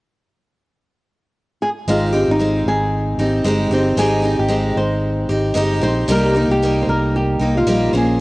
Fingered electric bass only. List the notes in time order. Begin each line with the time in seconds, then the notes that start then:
1.87 G#1
2.28 G#1
2.66 G#1
3.18 G#1
3.44 G1
3.70 G1
3.96 G#1
4.39 G#1
4.76 G#1
5.29 G#1
5.55 G1
5.82 A#1
6.08 C2
6.48 C2
6.87 C2
7.39 C2
7.66 A#1
7.93 A#1